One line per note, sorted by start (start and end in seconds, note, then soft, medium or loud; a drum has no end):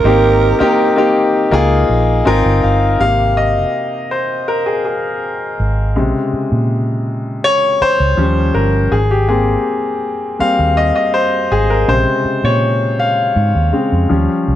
0.00 0.48 A#3 medium
0.00 1.13 A#4 loud
0.04 0.52 G#1 medium
0.04 0.49 C4 medium
0.04 0.49 D#4 medium
0.04 0.50 G4 medium
0.59 0.89 A#3 medium
0.59 0.89 C4 medium
0.59 0.90 D#4 medium
0.59 0.90 G4 loud
0.59 muted fingered electric bass stroke medium
0.96 1.50 A#3 medium
0.96 1.52 C4 medium
0.96 1.51 D#4 medium
0.96 1.53 G4 loud
1.51 1.84 C#2 loud
1.51 2.11 A#3 loud
1.51 2.11 D#4 medium
1.51 2.12 F4 medium
1.51 2.12 G#4 loud
1.89 2.21 A#1 medium
2.25 2.42 G#1 medium
2.25 2.85 C4 medium
2.25 2.85 D#4 medium
2.25 2.86 F4 medium
2.25 2.86 A#4 loud
2.25 2.61 G#5 medium
2.46 2.61 G1 medium
2.63 2.96 G1 medium
2.63 2.98 F5 medium
3.00 3.64 G#1 medium
3.00 5.92 C3 medium
3.00 5.92 A#3 medium
3.00 5.92 G4 soft
3.00 3.38 F5 loud
3.37 4.13 D#5 medium
4.11 4.46 C5 medium
4.48 4.67 A#4 medium
4.66 4.84 G#4 medium
4.85 5.19 G#4 medium
5.60 5.96 G#1 medium
5.96 6.12 A#1 medium
5.96 8.15 C3 medium
5.96 8.14 C#3 medium
5.96 8.14 G#3 soft
6.33 muted fingered electric bass stroke soft
6.52 7.40 A#2 medium
7.44 7.82 C#5 loud
7.81 8.58 C5 loud
7.81 muted fingered electric bass stroke soft
8.00 8.16 C#2 medium
8.17 8.50 D#2 medium
8.17 8.88 F3 medium
8.17 8.88 G3 medium
8.17 8.89 C#4 medium
8.54 8.87 G1 medium
8.54 8.63 A#4 medium
8.92 9.56 G#1 loud
8.92 9.11 G#4 medium
9.11 9.27 G4 medium
9.28 9.78 A#3 soft
9.28 9.79 C4 medium
9.28 9.78 G4 medium
9.28 9.63 G#4 medium
10.39 10.73 G3 medium
10.39 10.73 A#3 soft
10.39 10.73 C4 medium
10.39 10.75 F5 loud
10.39 muted fingered electric bass stroke soft
10.59 10.91 D#2 medium
10.77 10.94 D#5 loud
10.96 11.15 D#5 medium
11.14 11.52 C5 medium
11.52 11.83 G#1 medium
11.52 11.71 G#4 medium
11.70 11.89 A#4 medium
11.87 12.04 A#1 medium
11.87 12.95 C3 medium
11.87 12.95 C#3 medium
11.87 12.95 G#3 soft
11.87 12.46 C5 loud
12.25 muted fingered electric bass stroke soft
12.44 13.32 A#2 medium
12.44 12.96 C#5 medium
12.99 14.55 F5 medium
13.36 13.52 G#2 loud
13.55 13.71 D#2 medium
13.73 14.06 C#3 soft
13.73 14.06 G#3 soft
13.73 14.07 C4 soft
13.92 14.08 F2 medium
14.09 14.26 D#2 medium
14.09 14.55 F3 medium
14.09 14.55 G3 soft
14.09 14.55 C#4 medium
14.48 14.55 C2 medium